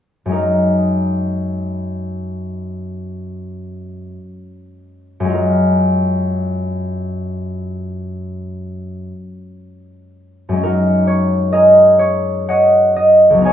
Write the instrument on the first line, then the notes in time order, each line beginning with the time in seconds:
harp
0.26 F#2 G#3
0.31 D#4 A#4
5.20 F#2
5.25 G#3
5.29 F4
5.34 A#4
10.49 F#2 G#3
10.56 C#4
10.63 D#4 F#4 A#4
11.07 C#5
11.52 G#4 A#4 D#5
11.99 C#5
12.49 C#5 D#5 F#5
12.96 D#5
13.30 C#2 F#3
13.38 B3 D#4
13.45 C#5 D#5 G#5